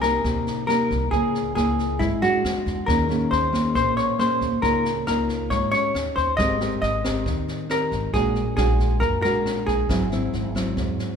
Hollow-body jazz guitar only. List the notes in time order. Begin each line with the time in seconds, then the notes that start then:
0.02 A#4
0.67 A#4
1.11 G#4
1.55 G#4
1.99 E4
2.22 F#4
2.86 A#4
3.31 C5
3.75 C5
3.97 C#5
4.20 C5
4.62 A#4
5.07 A#4
5.50 C#5
5.71 C#5
6.16 C5
6.37 D#5
6.82 D#5
7.71 A#4
8.14 G#4
8.57 G#4
9.00 A#4
9.22 A#4
9.67 G#4